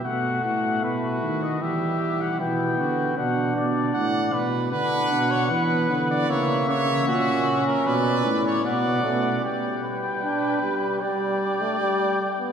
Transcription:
X:1
M:4/4
L:1/16
Q:1/4=76
K:Bphr
V:1 name="Trumpet"
f2 f2 B3 ^d e3 f g4 | f2 d4- d z f8 | e8 d4 f4 | [K:G] g8 g8 |]
V:2 name="Trumpet"
F4 F4 G4 E2 F2 | F3 z f2 B2 B3 ^c B3 d | ^c2 c2 F3 ^A B3 c d4 | [K:G] d2 B6 d8 |]
V:3 name="Trombone"
A,8 G,4 B,4 | D6- D z D4 B,4 | ^A,4 ^C8 B,2 =A,2 | [K:G] G,4 D2 G,2 G,3 A, G,3 B, |]
V:4 name="Tuba" clef=bass
B,,2 A,,2 B,,2 ^D,2 E,4 B,,2 =D,2 | B,,2 B,,2 A,,2 B,,2 D,2 B,,2 E,2 D,2 | ^C,2 C,2 ^A,,2 z2 B,,2 =A,,2 B,,2 B,,2 | [K:G] z16 |]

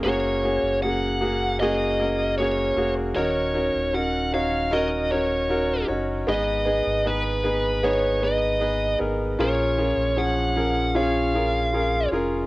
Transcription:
X:1
M:4/4
L:1/16
Q:1/4=77
K:F#
V:1 name="Lead electric guitar"
c4 f4 d4 c3 z | c4 f2 e2 d2 c4 z2 | d4 B4 c2 d4 z2 | c4 f4 e6 z2 |]
V:2 name="Grand piano"
[A,CFG]2 [A,CFG]2 [A,CFG]2 [A,CFG]2 [A,CFG]2 [A,CFA]2 [A,CFG]2 [A,CFG]2 | [CDFA]2 [CDFA]2 [CDFA]2 [CDFc]2 [CDFA]2 [CDFA]2 [CDFA]2 [CDFc]2 | [B,DGB]2 [B,DGB]2 [B,DGB]2 [B,DGB]2 [B,DGB]2 [B,DGB]2 [B,DGB]2 [B,DGA]2 | [CEGA]2 [CEGA]2 [E,CGc]2 [E,CGA]2 [CEGc]2 [CEGA]2 [CEGA]2 [CEGA]2 |]
V:3 name="Grand piano" clef=bass
z16 | D,6 z8 z2 | G,,6 z8 z2 | A,,6 z8 z2 |]
V:4 name="Sub bass" clef=bass
F,,,3 F,,,8- F,,,3 E,,,2 | D,,,3 D,,,8- D,,,3 F,,,2 | G,,,3 G,,,8- G,,,3 G,,,2 | A,,,3 A,,,8- A,,,3 E,,,2 |]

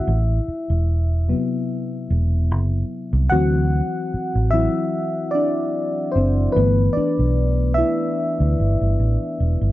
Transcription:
X:1
M:4/4
L:1/16
Q:"Swing 16ths" 1/4=74
K:Ador
V:1 name="FM electric piano"
[Ee]8- [Ee]2 z6 | [Ff]6 [Ee]4 [Dd]4 [Cc]2 | [B,B]2 [Dd]4 [Ee]8 z2 |]
V:2 name="FM electric piano" clef=bass
z6 [C,F,B,]8- [C,F,B,]2 | [E,F,C]2 z4 [E,F,C]2 z8 | [E,A,B,]16 |]
V:3 name="Fingered electric bass" clef=bass
A,,,2 z E,,,4 z3 E,,,2 F,,,2 z C,, | D,,3 z2 A,,,2 z6 z F,,,2 | G,,,2 z B,,,4 z2 D,, G,,, G,,, A,,, z E,,, G,,, |]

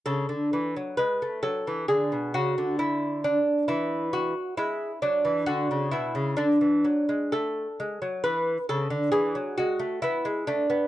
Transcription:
X:1
M:4/4
L:1/16
Q:1/4=67
K:A
V:1 name="Lute"
A4 B2 A2 G2 F2 E2 D2 | E2 F2 E2 D2 F2 E2 D4 | A4 B2 A2 G2 F2 E2 D2 |]
V:2 name="Lute" clef=bass
C, D, E, F, G, A, F, E, D, B,, C, D,4- D, | E,4 G,2 F, E, D, C, B,, C, D, E, F, G, | A,2 G, F, E,2 C, D, E, F, G, A, B, G, A, B, |]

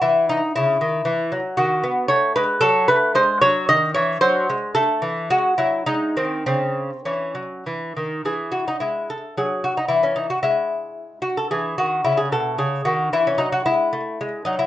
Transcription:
X:1
M:3/4
L:1/16
Q:1/4=112
K:C#m
V:1 name="Lute"
E2 D2 E6- E z | F4 c2 B2 A2 B2 | ^B2 c2 d2 c2 B4 | A4 F2 E2 D2 ^B,2 |
^B,4 C4 z4 | [K:E] G2 F D E2 A2 G2 F D | E C D F E6 F A | G2 F2 E G A2 G2 F2 |
E C D F E6 D E |]
V:2 name="Lute" clef=bass
E,4 C,2 D,2 E,2 F,2 | D,2 B,2 A,2 G,2 F,2 A,2 | G,2 F,2 D,2 E,2 F,2 G,2 | A,2 E,2 G,2 F,2 G,2 D,2 |
C,4 E,2 F,2 E,2 D,2 | [K:E] E,4 G,4 F,4 | E,4 G,8 | E,2 D,2 C,2 B,,2 C,2 D,2 |
E,2 F,2 G,2 A,2 G,2 F,2 |]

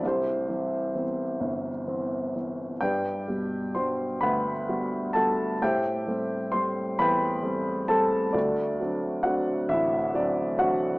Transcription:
X:1
M:6/8
L:1/8
Q:3/8=44
K:G
V:1 name="Grand piano"
[CEGc]2 z4 | [GBdg]2 [cc'] [Bfb]2 [Aa] | [Gceg]2 [cc'] [Bgb]2 [Aa] | [DFAd]2 [Ff] [Ee] d [Ff] |]
V:2 name="Grand piano"
C,, [E,G,C] [E,B,C] G,,, [E,B,C] [E,B,C] | G,, [B,,G,G] [G,DF] D,, [G,B,F] [G,B,F] | A,, [G,A,C] [G,A,C] E,, [G,A,C] [G,A,C] | D,, [F,CD] [F,CD] A,,, [F,CD] [F,CD] |]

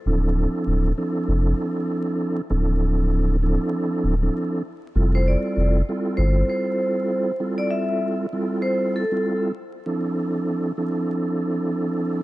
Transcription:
X:1
M:4/4
L:1/16
Q:"Swing 16ths" 1/4=98
K:Dm
V:1 name="Vibraphone"
z16 | z16 | z c d3 z3 c2 c6 | z d e3 z3 c2 A3 z3 |
z16 |]
V:2 name="Tonewheel organ"
[F,CDEA]6 [F,CDEA]8- [F,CDEA] z | [F,CDEA]6 [F,CDEA]4- [F,CDEA] [F,CDEA]3 z2 | [G,CEFA]6 [G,CEFA]8- [G,CEFA] z | [G,CEFA]6 [G,CEFA]4- [G,CEFA] [G,CEFA]3 z2 |
[F,CDEA]6 [F,CDEA]8- [F,CDEA] z |]
V:3 name="Sub bass" clef=bass
D,,,3 z D,,,2 z2 F,,,2 z6 | D,,,6- D,,, z3 D,,,2 z4 | F,,,3 z F,,,2 z2 G,,,2 z6 | z16 |
z16 |]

